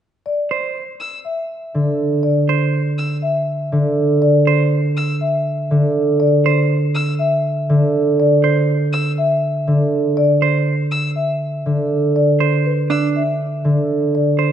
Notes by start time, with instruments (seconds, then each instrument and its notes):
0.26 marimba D5
0.51 clean electric guitar C5
1.00 violin E6
1.25 marimba E5
1.74 harp D3
2.23 marimba D5
2.49 clean electric guitar C5
2.98 violin E6
3.22 marimba E5
3.72 harp D3
4.22 marimba D5
4.47 clean electric guitar C5
4.97 violin E6
5.21 marimba E5
5.71 harp D3
6.20 marimba D5
6.46 clean electric guitar C5
6.95 violin E6
7.19 marimba E5
7.69 harp D3
8.20 marimba D5
8.44 clean electric guitar C5
8.93 violin E6
9.18 marimba E5
9.67 harp D3
10.17 marimba D5
10.42 clean electric guitar C5
10.92 violin E6
11.16 marimba E5
11.66 harp D3
12.16 marimba D5
12.40 clean electric guitar C5
12.66 marimba B4
12.90 clean electric guitar D4, violin E6
13.16 marimba E5
13.64 harp D3
14.15 marimba D5
14.39 clean electric guitar C5